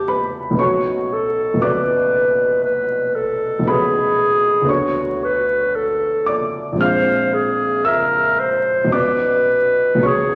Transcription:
Already playing: E2 G3 B3 D4 E4 G4 A4 G5 A5
0.08 B4 B5
0.51 B1 A3
0.55 B3 C#4 F#4
0.59 F#4 C#5 C#6
1.13 A4
1.54 B1 A3 B3
1.59 C#4 F#4 B4 D6
1.63 D5
2.64 B4
3.16 A4
3.59 B1 A3
3.63 B3 C#4 F#4
3.67 G#4 B4 B5
4.62 D2 A3 B3
4.67 D4 F#4 C#5 C#6
4.71 F#4
5.24 B4
5.75 A4
6.26 D5 D6
6.72 A#1 G#3
6.76 C4 D4 F4
6.81 C5 F5 F6
7.34 G#4
7.85 A#4 E5 E6
8.40 C5
8.84 B1 F#3 B3
8.91 C#4 B4 D5 D6
9.95 B1 F#3 B3
10.01 C#4 C#5 C#6
10.06 G#4

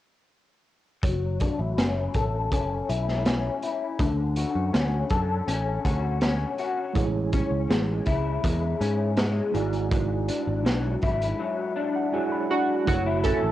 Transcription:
1.03 F#1 F#3, kick, closed hi-hat
1.40 D4, kick, closed hi-hat
1.59 A1 E4
1.77 F#1 C#4, snare, closed hi-hat
2.14 A1 A4, kick, closed hi-hat
2.52 F#1 C#4, kick, closed hi-hat
2.89 B1 E4, closed hi-hat
3.08 snare
3.25 C#4, snare, closed hi-hat
3.62 E4, closed hi-hat
3.99 D2 D3, kick, closed hi-hat
4.36 F#4, closed hi-hat
4.55 F#2
4.73 D2 C#4, snare, closed hi-hat
5.10 F#2 A4, kick, closed hi-hat
5.48 A1 C#4, closed hi-hat
5.85 D2 F#4, kick, closed hi-hat
6.21 C#4, snare, closed hi-hat
6.58 F#4, closed hi-hat
6.93 A1 G#3 E4 G#4, kick, closed hi-hat
6.99 C#5
7.33 C#4, kick, closed hi-hat
7.51 C#2
7.69 A1 G#3, snare, closed hi-hat
8.06 C#2 E4, kick, closed hi-hat
8.44 E2 G#3, kick, closed hi-hat
8.80 G#2 C#4, closed hi-hat
9.16 G#3, snare, closed hi-hat
9.52 G#1 G#2 G#3 E4 F#4, closed hi-hat
9.56 D5
9.72 closed hi-hat
9.91 G#2, kick, closed hi-hat
10.28 D4, closed hi-hat
10.47 G#1
10.65 B1 F#3, snare, closed hi-hat
11.02 G#1 E4, kick, closed hi-hat
11.22 closed hi-hat
11.39 F#3
11.76 D4 E5
11.96 F#5
12.12 F#3 G#3 E4 F#4 G#4 G#5
12.32 B5
12.50 D4 F#4
12.85 F#1 F#3 A3 E4 F#4, kick, closed hi-hat
12.90 C#5
13.06 E4
13.24 C#4 A4, kick, closed hi-hat
13.43 A1

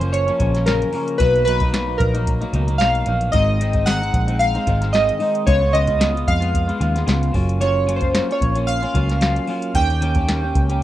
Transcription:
Already playing: F#1 C5
0.01 F3 A#3 C#4, closed hi-hat
0.13 C#5, closed hi-hat
0.27 F3 A#3 C#4, closed hi-hat
0.39 A#1 C#3 F3 A#3 C#4, kick, closed hi-hat
0.54 F3 A#3 C#4, snare, closed hi-hat
0.66 F#2 C#3 F3 A#3 C#4 A#4, snare, closed hi-hat
0.82 closed hi-hat
0.93 C#3 F3 A#3 C#4, open hi-hat
1.08 closed hi-hat
1.18 B1 B2 F#3 A#3 D#4 B4, kick, closed hi-hat
1.36 closed hi-hat
1.45 B2 F#3 A#3 D#4 B4, closed hi-hat
1.60 F#3 A#3 D#4, kick, closed hi-hat
1.73 B2 F#3 A#3 D#4, snare, closed hi-hat
1.87 F#3 A#3 D#4
1.98 A#1 A#4, kick, closed hi-hat
2.14 F#3 A#3 D#4, closed hi-hat
2.27 kick, closed hi-hat
2.41 F#3 A#3 D#4, closed hi-hat
2.53 C#2 B2 F#3 A#3 D#4, closed hi-hat
2.67 F#3 A#3 D#4, closed hi-hat
2.78 B1 B2 F#3 A#3 D#4 F5, snare, closed hi-hat
2.95 closed hi-hat
3.06 A#1 B2 F#3 A#3 D#4, closed hi-hat
3.21 closed hi-hat
3.32 G#1 G#2 D#3 G#3 C4 D#4 D#5, kick, closed hi-hat
3.60 D#3 G#3 C4 D#4, closed hi-hat
3.73 G#3 C4 D#4, kick, closed hi-hat
3.86 G#2 D#3 G#3 C4 D#4 F#5, snare, closed hi-hat
4.01 G#3 C4 D#4, closed hi-hat
4.14 A#1, kick, closed hi-hat
4.28 G#3 C4 D#4, closed hi-hat
4.39 F5, closed hi-hat
4.54 G#3 C4 D#4, closed hi-hat
4.67 G#1 D#3 G#3 C4 D#4, kick, closed hi-hat
4.81 G#3 C4 D#4, snare, closed hi-hat
4.93 G#2 D#3 G#3 C4 D#4 D#5, snare, closed hi-hat
5.09 closed hi-hat
5.20 D#3 G#3 C4 D#4, open hi-hat
5.35 closed hi-hat
5.46 C#2 C#3 G#3 B3 F4 C#5, kick, closed hi-hat
5.61 G#3 B3 F4
5.73 C#3 G#3 B3 F4 D#5, closed hi-hat
5.87 G#3 B3 F4, kick, closed hi-hat
5.99 C#3 G#3 B3 F4, snare, closed hi-hat
6.14 G#3 B3 F4, closed hi-hat
6.28 F2 F5, kick, closed hi-hat
6.40 G#3 B3 F4, closed hi-hat
6.55 kick, closed hi-hat
6.68 G#3 B3 F4, closed hi-hat
6.80 D#2 C#3 G#3 B3 F4, closed hi-hat
6.94 G#3 B3 F4, snare, closed hi-hat
7.07 C#2 C#3 G#3 B3 F4, snare, closed hi-hat
7.23 closed hi-hat
7.33 F#1 F#3 A#3 C#4 F4, kick, open hi-hat
7.49 closed hi-hat
7.60 F#3 A#3 C#4 F4 C#5, closed hi-hat
7.87 F#3 A#3 C#4 F4, closed hi-hat
7.96 C5
8.01 A#3 C#4 F4, kick, closed hi-hat
8.13 F#3 A#3 C#4 F4, snare, closed hi-hat
8.29 A#3 C#4 F4 C#5, closed hi-hat
8.41 A#1, kick, closed hi-hat
8.55 A#3 C#4 F4, closed hi-hat
8.67 F5, closed hi-hat
8.82 A#3 C#4 F4, closed hi-hat
8.94 C#2 F#3 A#3 C#4 F4, kick, closed hi-hat
9.09 A#3 C#4 F4, snare, closed hi-hat
9.21 F#3 A#3 C#4 F4, snare, closed hi-hat
9.36 closed hi-hat
9.47 F#3 A#3 C#4 F4, open hi-hat
9.62 closed hi-hat
9.75 D#2 D#3 A#3 C#4 G4 G5, kick, closed hi-hat
9.89 A#3 C#4 G4, closed hi-hat
10.01 D#3 A#3 C#4 G4, closed hi-hat
10.15 A#3 C#4 G4, kick, closed hi-hat
10.28 D#3 A#3 C#4 G4, snare, closed hi-hat
10.42 A#3 C#4 G4
10.55 C#2, kick, closed hi-hat
10.69 A#3 C#4 G4, closed hi-hat

